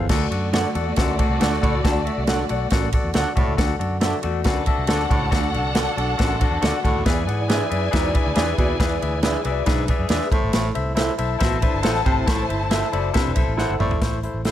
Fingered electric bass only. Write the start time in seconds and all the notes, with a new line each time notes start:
0.10 D2
0.31 F#2
0.75 E2
0.98 D2
1.29 C2
1.41 D2
1.63 C#2
1.85 D2
2.18 C2
2.50 B1
2.72 A1
3.04 E2
3.16 D2
3.37 C2
3.48 C#2
3.58 D2
3.80 F#2
4.24 E2
4.46 D2
4.78 C2
4.89 D2
5.11 C#2
5.32 D2
5.54 C2
5.97 B1
6.20 A1
6.51 E2
6.63 D2
6.85 D2
6.96 D#2
7.06 E2
7.28 G#2
7.72 F#2
7.94 E2
8.27 D2
8.36 E2
8.58 D#2
8.80 E2
9.02 D2
9.45 C2
9.67 B1
9.99 F#2
10.10 E2
10.32 A1
10.43 G#1
10.54 A1
10.76 C2
11.19 B1
11.41 A1
11.74 G1
11.85 A1
12.06 G#1
12.27 A1
12.49 G1
12.93 F#1
13.26 E1
13.37 B1
13.48 A1
13.70 G1
13.80 G#1
14.02 A1
14.34 A1